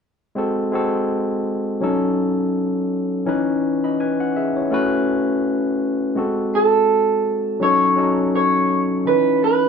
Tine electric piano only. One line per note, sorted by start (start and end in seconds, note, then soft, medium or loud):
0.35 0.62 G#3 medium
0.35 0.62 C4 medium
0.35 0.63 F#4 medium
0.35 0.63 A4 medium
0.72 1.70 G#3 medium
0.72 1.71 C4 medium
0.72 1.71 F#4 medium
0.72 1.72 A4 medium
1.81 2.98 F#3 medium
1.81 2.98 C#4 medium
1.81 2.99 D#4 medium
1.81 2.99 A4 medium
3.25 3.51 E3 medium
3.25 3.52 C#4 medium
3.25 3.52 D#4 medium
3.25 3.53 B4 medium
3.84 4.00 D#5 soft
3.84 3.99 B5 medium
4.00 4.19 B4 medium
4.00 4.18 G#5 medium
4.20 4.36 F#5 medium
4.36 4.55 G#4 medium
4.36 4.55 E5 medium
4.56 4.90 E4 soft
4.56 4.90 C#5 soft
4.70 5.88 A3 medium
4.70 5.88 C#4 medium
4.70 5.89 F#4 medium
4.70 5.89 B4 medium
6.15 7.13 G#3 medium
6.15 7.13 C4 medium
6.15 7.14 F#4 medium
6.15 7.15 A4 medium
7.60 7.90 F#3 medium
7.60 7.90 C#4 medium
7.60 7.91 D#4 medium
7.60 7.92 A4 medium
7.96 8.68 F#3 medium
7.96 8.69 C#4 medium
7.96 8.70 D#4 medium
7.96 8.70 A4 medium
9.05 9.12 D#3 soft
9.05 9.69 C#4 medium
9.05 9.69 D#4 medium
9.05 9.69 B4 medium
9.11 9.69 E3 medium